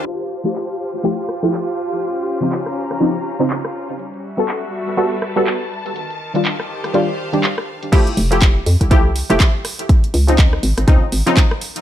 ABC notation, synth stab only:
X:1
M:4/4
L:1/16
Q:"Swing 16ths" 1/4=122
K:F
V:1 name="Synth stab"
z3 [F,A,EG]4- [F,A,EG] [F,A,EG] z2 [F,A,EG]2 z3 | z3 [_D,F,C_E]4- [D,F,CE] [D,F,CE] z2 [D,F,CE]2 z3 | z3 [G,=B,^FA]4- [G,B,FA] [G,B,FA] z2 [G,B,FA]2 z3 | z3 [_E,G,DF]4- [E,G,DF] [E,G,DF] z2 [E,G,DG] z4 |
[F,A,EG]3 [F,A,EG]4- [F,A,EG] [F,A,EG] z2 [F,A,EG]2 z3 | z3 [_D,F,C_E]4- [D,F,CE] [D,F,CE] z2 [D,F,CE]2 z3 |]